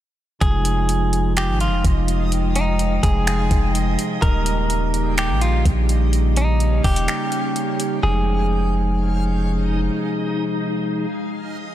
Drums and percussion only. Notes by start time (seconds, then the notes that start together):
0.41 kick, closed hi-hat
0.65 closed hi-hat
0.89 closed hi-hat
1.13 closed hi-hat
1.37 finger snap, closed hi-hat
1.60 closed hi-hat
1.85 kick, closed hi-hat
2.08 closed hi-hat
2.32 closed hi-hat
2.56 closed hi-hat
2.79 closed hi-hat
3.03 kick, closed hi-hat
3.27 finger snap, closed hi-hat
3.51 kick, closed hi-hat
3.75 closed hi-hat
3.99 closed hi-hat
4.22 kick, closed hi-hat
4.46 closed hi-hat
4.70 closed hi-hat
4.94 closed hi-hat
5.18 finger snap, closed hi-hat
5.41 closed hi-hat
5.65 kick, closed hi-hat
5.89 closed hi-hat
6.13 closed hi-hat
6.36 closed hi-hat
6.60 closed hi-hat
6.84 kick, closed hi-hat, open hi-hat
6.96 closed hi-hat
7.08 finger snap, closed hi-hat
7.32 closed hi-hat
7.56 closed hi-hat
7.80 closed hi-hat